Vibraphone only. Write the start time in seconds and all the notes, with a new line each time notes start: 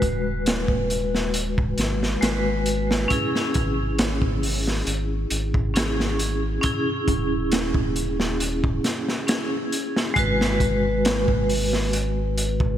Already playing: G#3 F#4 B4
2.21 G#3 F#4 B4
3.08 C#4 E4
3.13 G#4
5.74 C#4 E4 G#4
6.61 C#4 E4
6.66 G#4
9.27 C#4 E4 G#4
10.14 G#3 F#4
10.19 B4